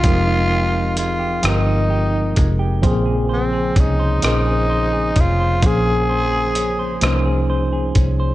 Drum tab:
HH |x-xx-x|x-xx-x|x-xx-x|
SD |---r--|---r--|---r--|
BD |o----o|o-o--o|o----o|